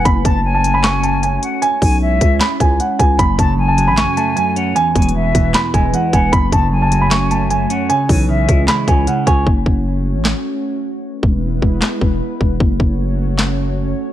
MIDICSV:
0, 0, Header, 1, 7, 480
1, 0, Start_track
1, 0, Key_signature, 3, "minor"
1, 0, Tempo, 392157
1, 66, Time_signature, 4, 2, 24, 8
1, 17293, End_track
2, 0, Start_track
2, 0, Title_t, "Grand piano"
2, 0, Program_c, 0, 0
2, 61, Note_on_c, 0, 83, 102
2, 287, Note_off_c, 0, 83, 0
2, 311, Note_on_c, 0, 81, 87
2, 647, Note_off_c, 0, 81, 0
2, 666, Note_on_c, 0, 81, 80
2, 890, Note_off_c, 0, 81, 0
2, 904, Note_on_c, 0, 83, 79
2, 1017, Note_off_c, 0, 83, 0
2, 1023, Note_on_c, 0, 85, 91
2, 1248, Note_off_c, 0, 85, 0
2, 1265, Note_on_c, 0, 81, 77
2, 1489, Note_off_c, 0, 81, 0
2, 1506, Note_on_c, 0, 80, 80
2, 1730, Note_off_c, 0, 80, 0
2, 1981, Note_on_c, 0, 80, 99
2, 2894, Note_off_c, 0, 80, 0
2, 2945, Note_on_c, 0, 83, 84
2, 3169, Note_off_c, 0, 83, 0
2, 3189, Note_on_c, 0, 80, 81
2, 3412, Note_off_c, 0, 80, 0
2, 3427, Note_on_c, 0, 78, 72
2, 3651, Note_off_c, 0, 78, 0
2, 3662, Note_on_c, 0, 80, 89
2, 3888, Note_off_c, 0, 80, 0
2, 3902, Note_on_c, 0, 83, 106
2, 4128, Note_off_c, 0, 83, 0
2, 4149, Note_on_c, 0, 81, 75
2, 4486, Note_off_c, 0, 81, 0
2, 4506, Note_on_c, 0, 81, 79
2, 4730, Note_off_c, 0, 81, 0
2, 4743, Note_on_c, 0, 83, 83
2, 4857, Note_off_c, 0, 83, 0
2, 4867, Note_on_c, 0, 85, 90
2, 5090, Note_off_c, 0, 85, 0
2, 5104, Note_on_c, 0, 81, 80
2, 5329, Note_off_c, 0, 81, 0
2, 5339, Note_on_c, 0, 80, 87
2, 5566, Note_off_c, 0, 80, 0
2, 5820, Note_on_c, 0, 80, 103
2, 6734, Note_off_c, 0, 80, 0
2, 6790, Note_on_c, 0, 83, 92
2, 7012, Note_off_c, 0, 83, 0
2, 7026, Note_on_c, 0, 80, 89
2, 7250, Note_off_c, 0, 80, 0
2, 7272, Note_on_c, 0, 78, 80
2, 7493, Note_off_c, 0, 78, 0
2, 7507, Note_on_c, 0, 80, 85
2, 7731, Note_off_c, 0, 80, 0
2, 7741, Note_on_c, 0, 83, 105
2, 7967, Note_off_c, 0, 83, 0
2, 7991, Note_on_c, 0, 81, 83
2, 8327, Note_off_c, 0, 81, 0
2, 8346, Note_on_c, 0, 81, 82
2, 8570, Note_off_c, 0, 81, 0
2, 8583, Note_on_c, 0, 83, 78
2, 8696, Note_off_c, 0, 83, 0
2, 8703, Note_on_c, 0, 85, 91
2, 8928, Note_off_c, 0, 85, 0
2, 8945, Note_on_c, 0, 81, 74
2, 9169, Note_off_c, 0, 81, 0
2, 9186, Note_on_c, 0, 80, 82
2, 9410, Note_off_c, 0, 80, 0
2, 9661, Note_on_c, 0, 80, 102
2, 10575, Note_off_c, 0, 80, 0
2, 10626, Note_on_c, 0, 83, 84
2, 10850, Note_off_c, 0, 83, 0
2, 10870, Note_on_c, 0, 80, 78
2, 11092, Note_off_c, 0, 80, 0
2, 11108, Note_on_c, 0, 78, 75
2, 11331, Note_off_c, 0, 78, 0
2, 11342, Note_on_c, 0, 80, 87
2, 11568, Note_off_c, 0, 80, 0
2, 17293, End_track
3, 0, Start_track
3, 0, Title_t, "Flute"
3, 0, Program_c, 1, 73
3, 306, Note_on_c, 1, 81, 87
3, 534, Note_off_c, 1, 81, 0
3, 546, Note_on_c, 1, 80, 85
3, 1697, Note_off_c, 1, 80, 0
3, 1746, Note_on_c, 1, 78, 73
3, 1974, Note_off_c, 1, 78, 0
3, 2226, Note_on_c, 1, 80, 83
3, 2454, Note_off_c, 1, 80, 0
3, 2466, Note_on_c, 1, 76, 82
3, 2917, Note_off_c, 1, 76, 0
3, 4145, Note_on_c, 1, 81, 85
3, 4373, Note_off_c, 1, 81, 0
3, 4385, Note_on_c, 1, 80, 85
3, 5537, Note_off_c, 1, 80, 0
3, 5585, Note_on_c, 1, 78, 88
3, 5813, Note_off_c, 1, 78, 0
3, 6065, Note_on_c, 1, 80, 76
3, 6293, Note_off_c, 1, 80, 0
3, 6306, Note_on_c, 1, 76, 84
3, 6757, Note_off_c, 1, 76, 0
3, 7505, Note_on_c, 1, 78, 82
3, 7734, Note_off_c, 1, 78, 0
3, 7986, Note_on_c, 1, 81, 85
3, 8214, Note_off_c, 1, 81, 0
3, 8226, Note_on_c, 1, 80, 82
3, 9377, Note_off_c, 1, 80, 0
3, 9426, Note_on_c, 1, 78, 74
3, 9654, Note_off_c, 1, 78, 0
3, 9906, Note_on_c, 1, 80, 85
3, 10134, Note_off_c, 1, 80, 0
3, 10146, Note_on_c, 1, 76, 79
3, 10597, Note_off_c, 1, 76, 0
3, 17293, End_track
4, 0, Start_track
4, 0, Title_t, "Ambient pad"
4, 0, Program_c, 2, 92
4, 66, Note_on_c, 2, 57, 90
4, 66, Note_on_c, 2, 61, 81
4, 66, Note_on_c, 2, 66, 82
4, 66, Note_on_c, 2, 73, 95
4, 1967, Note_off_c, 2, 57, 0
4, 1967, Note_off_c, 2, 61, 0
4, 1967, Note_off_c, 2, 66, 0
4, 1986, Note_on_c, 2, 56, 85
4, 1986, Note_on_c, 2, 61, 82
4, 1986, Note_on_c, 2, 64, 80
4, 3887, Note_off_c, 2, 56, 0
4, 3887, Note_off_c, 2, 64, 0
4, 3907, Note_on_c, 2, 57, 84
4, 3907, Note_on_c, 2, 66, 78
4, 5777, Note_off_c, 2, 73, 0
4, 5787, Note_off_c, 2, 61, 0
4, 5807, Note_off_c, 2, 57, 0
4, 5807, Note_off_c, 2, 66, 0
4, 5826, Note_on_c, 2, 56, 87
4, 5826, Note_on_c, 2, 59, 80
4, 5826, Note_on_c, 2, 64, 81
4, 5826, Note_on_c, 2, 71, 94
4, 7726, Note_off_c, 2, 64, 0
4, 7726, Note_off_c, 2, 71, 0
4, 7727, Note_off_c, 2, 56, 0
4, 7727, Note_off_c, 2, 59, 0
4, 7745, Note_on_c, 2, 57, 87
4, 7745, Note_on_c, 2, 73, 97
4, 7746, Note_on_c, 2, 61, 79
4, 7746, Note_on_c, 2, 66, 82
4, 9646, Note_off_c, 2, 57, 0
4, 9646, Note_off_c, 2, 66, 0
4, 9647, Note_off_c, 2, 61, 0
4, 9665, Note_on_c, 2, 56, 86
4, 9665, Note_on_c, 2, 61, 78
4, 9665, Note_on_c, 2, 64, 80
4, 11547, Note_off_c, 2, 73, 0
4, 11566, Note_off_c, 2, 56, 0
4, 11566, Note_off_c, 2, 61, 0
4, 11566, Note_off_c, 2, 64, 0
4, 11586, Note_on_c, 2, 57, 87
4, 11586, Note_on_c, 2, 61, 81
4, 11586, Note_on_c, 2, 66, 77
4, 11586, Note_on_c, 2, 73, 94
4, 13487, Note_off_c, 2, 57, 0
4, 13487, Note_off_c, 2, 61, 0
4, 13487, Note_off_c, 2, 66, 0
4, 13487, Note_off_c, 2, 73, 0
4, 13506, Note_on_c, 2, 56, 85
4, 13506, Note_on_c, 2, 59, 77
4, 13506, Note_on_c, 2, 64, 77
4, 13506, Note_on_c, 2, 71, 95
4, 15407, Note_off_c, 2, 56, 0
4, 15407, Note_off_c, 2, 59, 0
4, 15407, Note_off_c, 2, 64, 0
4, 15407, Note_off_c, 2, 71, 0
4, 15426, Note_on_c, 2, 57, 86
4, 15426, Note_on_c, 2, 61, 78
4, 15426, Note_on_c, 2, 66, 82
4, 15426, Note_on_c, 2, 73, 95
4, 17293, Note_off_c, 2, 57, 0
4, 17293, Note_off_c, 2, 61, 0
4, 17293, Note_off_c, 2, 66, 0
4, 17293, Note_off_c, 2, 73, 0
4, 17293, End_track
5, 0, Start_track
5, 0, Title_t, "Clean electric guitar"
5, 0, Program_c, 3, 27
5, 3904, Note_on_c, 3, 42, 94
5, 4146, Note_on_c, 3, 49, 90
5, 4371, Note_off_c, 3, 42, 0
5, 4385, Note_on_c, 3, 42, 87
5, 4625, Note_on_c, 3, 54, 85
5, 4852, Note_off_c, 3, 42, 0
5, 4866, Note_on_c, 3, 42, 82
5, 5106, Note_on_c, 3, 57, 92
5, 5332, Note_off_c, 3, 42, 0
5, 5346, Note_off_c, 3, 49, 0
5, 5346, Note_on_c, 3, 42, 88
5, 5587, Note_on_c, 3, 61, 86
5, 5819, Note_off_c, 3, 42, 0
5, 5824, Note_on_c, 3, 40, 95
5, 5825, Note_off_c, 3, 54, 0
5, 5826, Note_off_c, 3, 57, 0
5, 5826, Note_off_c, 3, 61, 0
5, 6066, Note_on_c, 3, 47, 82
5, 6291, Note_off_c, 3, 40, 0
5, 6306, Note_on_c, 3, 40, 87
5, 6545, Note_on_c, 3, 52, 78
5, 6772, Note_off_c, 3, 40, 0
5, 6786, Note_on_c, 3, 40, 97
5, 7024, Note_on_c, 3, 56, 92
5, 7252, Note_off_c, 3, 40, 0
5, 7266, Note_off_c, 3, 47, 0
5, 7266, Note_on_c, 3, 40, 84
5, 7506, Note_on_c, 3, 59, 89
5, 7740, Note_off_c, 3, 40, 0
5, 7745, Note_off_c, 3, 52, 0
5, 7745, Note_off_c, 3, 56, 0
5, 7745, Note_on_c, 3, 42, 93
5, 7746, Note_off_c, 3, 59, 0
5, 7986, Note_on_c, 3, 49, 78
5, 8210, Note_off_c, 3, 42, 0
5, 8225, Note_on_c, 3, 42, 86
5, 8465, Note_on_c, 3, 54, 84
5, 8689, Note_off_c, 3, 42, 0
5, 8704, Note_on_c, 3, 42, 89
5, 8946, Note_on_c, 3, 57, 93
5, 9172, Note_off_c, 3, 42, 0
5, 9186, Note_off_c, 3, 49, 0
5, 9186, Note_on_c, 3, 42, 74
5, 9427, Note_on_c, 3, 61, 90
5, 9665, Note_off_c, 3, 54, 0
5, 9665, Note_on_c, 3, 49, 96
5, 9666, Note_off_c, 3, 42, 0
5, 9666, Note_off_c, 3, 57, 0
5, 9666, Note_off_c, 3, 61, 0
5, 9905, Note_on_c, 3, 52, 82
5, 10130, Note_off_c, 3, 49, 0
5, 10145, Note_on_c, 3, 49, 85
5, 10385, Note_on_c, 3, 56, 82
5, 10612, Note_off_c, 3, 49, 0
5, 10626, Note_on_c, 3, 49, 86
5, 10864, Note_on_c, 3, 61, 91
5, 11091, Note_off_c, 3, 49, 0
5, 11105, Note_off_c, 3, 52, 0
5, 11105, Note_on_c, 3, 49, 89
5, 11346, Note_on_c, 3, 73, 98
5, 11585, Note_off_c, 3, 61, 0
5, 11586, Note_off_c, 3, 49, 0
5, 11586, Note_off_c, 3, 56, 0
5, 11586, Note_off_c, 3, 73, 0
5, 17293, End_track
6, 0, Start_track
6, 0, Title_t, "808-style bass"
6, 0, Program_c, 4, 38
6, 66, Note_on_c, 4, 30, 114
6, 296, Note_off_c, 4, 30, 0
6, 305, Note_on_c, 4, 30, 104
6, 1697, Note_off_c, 4, 30, 0
6, 2225, Note_on_c, 4, 35, 102
6, 2686, Note_off_c, 4, 35, 0
6, 2707, Note_on_c, 4, 37, 105
6, 2937, Note_off_c, 4, 37, 0
6, 3185, Note_on_c, 4, 37, 107
6, 3416, Note_off_c, 4, 37, 0
6, 3665, Note_on_c, 4, 37, 110
6, 3896, Note_off_c, 4, 37, 0
6, 3906, Note_on_c, 4, 30, 108
6, 4136, Note_off_c, 4, 30, 0
6, 4145, Note_on_c, 4, 30, 107
6, 4746, Note_on_c, 4, 33, 96
6, 4764, Note_off_c, 4, 30, 0
6, 4974, Note_off_c, 4, 33, 0
6, 6065, Note_on_c, 4, 28, 104
6, 6526, Note_off_c, 4, 28, 0
6, 6546, Note_on_c, 4, 28, 105
6, 6776, Note_off_c, 4, 28, 0
6, 7024, Note_on_c, 4, 28, 105
6, 7256, Note_off_c, 4, 28, 0
6, 7505, Note_on_c, 4, 28, 106
6, 7736, Note_off_c, 4, 28, 0
6, 7746, Note_on_c, 4, 30, 108
6, 7976, Note_off_c, 4, 30, 0
6, 7985, Note_on_c, 4, 30, 101
6, 9377, Note_off_c, 4, 30, 0
6, 9905, Note_on_c, 4, 35, 101
6, 10366, Note_off_c, 4, 35, 0
6, 10387, Note_on_c, 4, 37, 107
6, 10617, Note_off_c, 4, 37, 0
6, 10865, Note_on_c, 4, 37, 105
6, 11096, Note_off_c, 4, 37, 0
6, 11345, Note_on_c, 4, 37, 108
6, 11576, Note_off_c, 4, 37, 0
6, 11586, Note_on_c, 4, 30, 113
6, 11816, Note_off_c, 4, 30, 0
6, 11825, Note_on_c, 4, 30, 104
6, 12425, Note_on_c, 4, 33, 99
6, 12444, Note_off_c, 4, 30, 0
6, 12654, Note_off_c, 4, 33, 0
6, 13745, Note_on_c, 4, 28, 105
6, 14206, Note_off_c, 4, 28, 0
6, 14227, Note_on_c, 4, 28, 103
6, 14457, Note_off_c, 4, 28, 0
6, 14705, Note_on_c, 4, 28, 109
6, 14936, Note_off_c, 4, 28, 0
6, 15185, Note_on_c, 4, 28, 106
6, 15416, Note_off_c, 4, 28, 0
6, 15426, Note_on_c, 4, 30, 109
6, 15656, Note_off_c, 4, 30, 0
6, 15665, Note_on_c, 4, 30, 103
6, 17057, Note_off_c, 4, 30, 0
6, 17293, End_track
7, 0, Start_track
7, 0, Title_t, "Drums"
7, 65, Note_on_c, 9, 42, 84
7, 66, Note_on_c, 9, 36, 127
7, 188, Note_off_c, 9, 36, 0
7, 188, Note_off_c, 9, 42, 0
7, 305, Note_on_c, 9, 36, 112
7, 306, Note_on_c, 9, 42, 83
7, 428, Note_off_c, 9, 36, 0
7, 429, Note_off_c, 9, 42, 0
7, 787, Note_on_c, 9, 42, 85
7, 909, Note_off_c, 9, 42, 0
7, 1026, Note_on_c, 9, 38, 120
7, 1026, Note_on_c, 9, 42, 85
7, 1029, Note_on_c, 9, 39, 98
7, 1148, Note_off_c, 9, 38, 0
7, 1149, Note_off_c, 9, 42, 0
7, 1151, Note_off_c, 9, 39, 0
7, 1267, Note_on_c, 9, 42, 64
7, 1389, Note_off_c, 9, 42, 0
7, 1506, Note_on_c, 9, 42, 72
7, 1628, Note_off_c, 9, 42, 0
7, 1747, Note_on_c, 9, 42, 92
7, 1869, Note_off_c, 9, 42, 0
7, 1986, Note_on_c, 9, 42, 84
7, 2108, Note_off_c, 9, 42, 0
7, 2225, Note_on_c, 9, 36, 108
7, 2226, Note_on_c, 9, 46, 91
7, 2348, Note_off_c, 9, 36, 0
7, 2349, Note_off_c, 9, 46, 0
7, 2707, Note_on_c, 9, 36, 94
7, 2707, Note_on_c, 9, 42, 83
7, 2829, Note_off_c, 9, 36, 0
7, 2829, Note_off_c, 9, 42, 0
7, 2946, Note_on_c, 9, 38, 117
7, 2946, Note_on_c, 9, 42, 82
7, 2949, Note_on_c, 9, 39, 96
7, 3068, Note_off_c, 9, 38, 0
7, 3069, Note_off_c, 9, 42, 0
7, 3072, Note_off_c, 9, 39, 0
7, 3185, Note_on_c, 9, 36, 90
7, 3187, Note_on_c, 9, 42, 71
7, 3307, Note_off_c, 9, 36, 0
7, 3309, Note_off_c, 9, 42, 0
7, 3426, Note_on_c, 9, 42, 71
7, 3548, Note_off_c, 9, 42, 0
7, 3665, Note_on_c, 9, 36, 95
7, 3666, Note_on_c, 9, 42, 81
7, 3788, Note_off_c, 9, 36, 0
7, 3789, Note_off_c, 9, 42, 0
7, 3906, Note_on_c, 9, 36, 127
7, 3906, Note_on_c, 9, 42, 81
7, 4028, Note_off_c, 9, 36, 0
7, 4028, Note_off_c, 9, 42, 0
7, 4145, Note_on_c, 9, 36, 110
7, 4146, Note_on_c, 9, 42, 86
7, 4268, Note_off_c, 9, 36, 0
7, 4269, Note_off_c, 9, 42, 0
7, 4626, Note_on_c, 9, 42, 85
7, 4749, Note_off_c, 9, 42, 0
7, 4865, Note_on_c, 9, 38, 121
7, 4866, Note_on_c, 9, 42, 85
7, 4869, Note_on_c, 9, 39, 97
7, 4988, Note_off_c, 9, 38, 0
7, 4989, Note_off_c, 9, 42, 0
7, 4991, Note_off_c, 9, 39, 0
7, 5106, Note_on_c, 9, 42, 65
7, 5229, Note_off_c, 9, 42, 0
7, 5345, Note_on_c, 9, 42, 71
7, 5468, Note_off_c, 9, 42, 0
7, 5586, Note_on_c, 9, 42, 87
7, 5708, Note_off_c, 9, 42, 0
7, 5825, Note_on_c, 9, 42, 83
7, 5948, Note_off_c, 9, 42, 0
7, 6065, Note_on_c, 9, 36, 111
7, 6065, Note_on_c, 9, 42, 70
7, 6145, Note_off_c, 9, 42, 0
7, 6145, Note_on_c, 9, 42, 71
7, 6187, Note_off_c, 9, 36, 0
7, 6225, Note_off_c, 9, 42, 0
7, 6225, Note_on_c, 9, 42, 68
7, 6348, Note_off_c, 9, 42, 0
7, 6546, Note_on_c, 9, 36, 95
7, 6546, Note_on_c, 9, 42, 86
7, 6669, Note_off_c, 9, 36, 0
7, 6669, Note_off_c, 9, 42, 0
7, 6785, Note_on_c, 9, 38, 121
7, 6786, Note_on_c, 9, 42, 82
7, 6789, Note_on_c, 9, 39, 96
7, 6908, Note_off_c, 9, 38, 0
7, 6908, Note_off_c, 9, 42, 0
7, 6911, Note_off_c, 9, 39, 0
7, 7024, Note_on_c, 9, 36, 95
7, 7026, Note_on_c, 9, 42, 67
7, 7147, Note_off_c, 9, 36, 0
7, 7149, Note_off_c, 9, 42, 0
7, 7266, Note_on_c, 9, 42, 71
7, 7388, Note_off_c, 9, 42, 0
7, 7505, Note_on_c, 9, 36, 101
7, 7506, Note_on_c, 9, 42, 82
7, 7627, Note_off_c, 9, 36, 0
7, 7629, Note_off_c, 9, 42, 0
7, 7746, Note_on_c, 9, 36, 126
7, 7746, Note_on_c, 9, 42, 83
7, 7868, Note_off_c, 9, 36, 0
7, 7868, Note_off_c, 9, 42, 0
7, 7985, Note_on_c, 9, 36, 108
7, 7986, Note_on_c, 9, 42, 84
7, 8108, Note_off_c, 9, 36, 0
7, 8109, Note_off_c, 9, 42, 0
7, 8467, Note_on_c, 9, 42, 85
7, 8589, Note_off_c, 9, 42, 0
7, 8706, Note_on_c, 9, 38, 123
7, 8706, Note_on_c, 9, 42, 84
7, 8709, Note_on_c, 9, 39, 98
7, 8828, Note_off_c, 9, 38, 0
7, 8829, Note_off_c, 9, 42, 0
7, 8831, Note_off_c, 9, 39, 0
7, 8946, Note_on_c, 9, 42, 64
7, 9069, Note_off_c, 9, 42, 0
7, 9186, Note_on_c, 9, 42, 71
7, 9308, Note_off_c, 9, 42, 0
7, 9426, Note_on_c, 9, 42, 91
7, 9549, Note_off_c, 9, 42, 0
7, 9666, Note_on_c, 9, 42, 83
7, 9788, Note_off_c, 9, 42, 0
7, 9905, Note_on_c, 9, 36, 113
7, 9906, Note_on_c, 9, 46, 91
7, 10028, Note_off_c, 9, 36, 0
7, 10029, Note_off_c, 9, 46, 0
7, 10386, Note_on_c, 9, 36, 98
7, 10386, Note_on_c, 9, 42, 86
7, 10509, Note_off_c, 9, 36, 0
7, 10509, Note_off_c, 9, 42, 0
7, 10625, Note_on_c, 9, 38, 124
7, 10626, Note_on_c, 9, 42, 85
7, 10629, Note_on_c, 9, 39, 97
7, 10748, Note_off_c, 9, 38, 0
7, 10748, Note_off_c, 9, 42, 0
7, 10751, Note_off_c, 9, 39, 0
7, 10864, Note_on_c, 9, 36, 96
7, 10866, Note_on_c, 9, 42, 69
7, 10987, Note_off_c, 9, 36, 0
7, 10989, Note_off_c, 9, 42, 0
7, 11105, Note_on_c, 9, 42, 69
7, 11228, Note_off_c, 9, 42, 0
7, 11345, Note_on_c, 9, 36, 101
7, 11346, Note_on_c, 9, 42, 82
7, 11467, Note_off_c, 9, 36, 0
7, 11468, Note_off_c, 9, 42, 0
7, 11586, Note_on_c, 9, 36, 123
7, 11708, Note_off_c, 9, 36, 0
7, 11825, Note_on_c, 9, 36, 106
7, 11948, Note_off_c, 9, 36, 0
7, 12546, Note_on_c, 9, 38, 115
7, 12549, Note_on_c, 9, 39, 89
7, 12668, Note_off_c, 9, 38, 0
7, 12671, Note_off_c, 9, 39, 0
7, 13745, Note_on_c, 9, 36, 111
7, 13868, Note_off_c, 9, 36, 0
7, 14227, Note_on_c, 9, 36, 93
7, 14349, Note_off_c, 9, 36, 0
7, 14465, Note_on_c, 9, 38, 114
7, 14469, Note_on_c, 9, 39, 97
7, 14588, Note_off_c, 9, 38, 0
7, 14591, Note_off_c, 9, 39, 0
7, 14705, Note_on_c, 9, 36, 92
7, 14827, Note_off_c, 9, 36, 0
7, 15185, Note_on_c, 9, 36, 95
7, 15308, Note_off_c, 9, 36, 0
7, 15426, Note_on_c, 9, 36, 125
7, 15548, Note_off_c, 9, 36, 0
7, 15665, Note_on_c, 9, 36, 106
7, 15788, Note_off_c, 9, 36, 0
7, 16385, Note_on_c, 9, 38, 117
7, 16389, Note_on_c, 9, 39, 93
7, 16508, Note_off_c, 9, 38, 0
7, 16511, Note_off_c, 9, 39, 0
7, 17293, End_track
0, 0, End_of_file